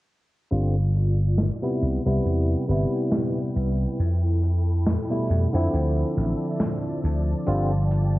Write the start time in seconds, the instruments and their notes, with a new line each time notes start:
0.51 slap bass G1, tine electric piano D3 G3 C4 F4, string machine F4 D5 G5, closed hi-hat
0.96 closed hi-hat
1.38 snare, closed hi-hat
1.62 tine electric piano C3 G3 B3 E4, closed hi-hat
1.82 slap bass C2, string machine E4 B4, closed hi-hat
2.06 slap bass C2, tine electric piano C3 G3 B3 E4
2.25 slap bass E2, closed hi-hat
2.68 slap bass G1, tine electric piano C3 G3 B3 E4, closed hi-hat
3.12 snare, closed hi-hat
3.56 slap bass C2, closed hi-hat
3.99 slap bass F2, string machine A4 B5, closed hi-hat
4.43 closed hi-hat
4.87 snare, closed hi-hat
5.10 tine electric piano B2 G3 A3 E4, closed hi-hat
5.30 slap bass F2, closed hi-hat
5.53 slap bass F2, tine electric piano D3 F3 C4 E4
5.73 slap bass D2, string machine F3 D5 E5 A5, closed hi-hat
6.17 slap bass A1, closed hi-hat
6.60 snare, closed hi-hat
7.04 slap bass D2, closed hi-hat
7.47 slap bass G1, tine electric piano D3 G3 C4 F4, string machine G5, closed hi-hat
7.91 closed hi-hat